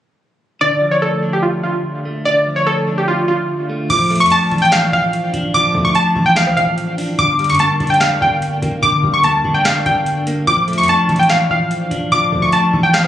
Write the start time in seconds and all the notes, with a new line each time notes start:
0.61 D3 D5
0.81 F3
0.91 C#5
1.02 A3 A4
1.23 D4
1.33 G4
1.42 F4
1.63 D3 F4
2.05 A3
2.25 D3 D5
2.46 F3
2.56 C#5
2.66 A3 A4
2.87 D4
2.98 G4
3.08 F4
3.28 D3 F4
3.70 A3
3.90 D1 F3 D6, kick, closed hi-hat, crash
4.10 A3, closed hi-hat
4.16 closed hi-hat
4.20 F2 C#6, closed hi-hat
4.26 closed hi-hat
4.30 D4 A5, closed hi-hat
4.51 D1 E3, kick, closed hi-hat
4.58 G5, closed hi-hat
4.65 closed hi-hat
4.72 F5, snare, clap, closed hi-hat
4.93 D1 F3 F5, kick
5.13 closed hi-hat
5.34 D1 D4, kick, closed hi-hat
5.54 D1 F3 D6, kick, closed hi-hat
5.75 D2 A3, kick
5.85 C#6
5.95 D4 A5, closed hi-hat
6.16 F1 E3, kick
6.26 G5
6.36 F5, snare, clap, closed hi-hat
6.47 D2, cross-stick
6.57 D1 F3 F5, kick, closed hi-hat
6.78 closed hi-hat
6.98 D4, open hi-hat
7.18 G1 D3 D6, kick, closed hi-hat
7.39 G3, closed hi-hat
7.44 closed hi-hat
7.49 G2 C#6, closed hi-hat
7.55 closed hi-hat
7.59 A#3 A5, closed hi-hat
7.80 F1 D4, kick, closed hi-hat
7.87 G5, closed hi-hat
7.94 closed hi-hat
8.01 F5, snare, clap, closed hi-hat
8.21 G1 D3 G5, kick
8.42 closed hi-hat
8.62 G1 A#3, kick, closed hi-hat
8.82 G1 D3 D6, kick, closed hi-hat
9.04 G1 G3, kick
9.14 C#6
9.24 D2 A#3 A5, closed hi-hat
9.45 G1 D4, kick
9.54 G5
9.65 F5, snare, clap, closed hi-hat
9.86 G1 D3 G5, kick, closed hi-hat
10.06 closed hi-hat
10.27 A#3, closed hi-hat
10.47 D1 F3 D6, kick, closed hi-hat
10.68 A3, closed hi-hat
10.73 closed hi-hat
10.78 F2 C#6, closed hi-hat
10.83 closed hi-hat
10.88 D4 A5, closed hi-hat
11.09 D1 E3, kick, closed hi-hat
11.16 G5, closed hi-hat
11.23 closed hi-hat
11.30 F5, snare, clap, closed hi-hat
11.50 D1 F3 F5, kick
11.71 closed hi-hat
11.91 D1 D4, kick, closed hi-hat
12.12 D1 F3 D6, kick, closed hi-hat
12.32 D2 A3, kick
12.42 C#6
12.52 D4 A5, closed hi-hat
12.73 F1 E3, kick
12.83 G5
12.94 F5, snare, clap, closed hi-hat
13.04 D2, cross-stick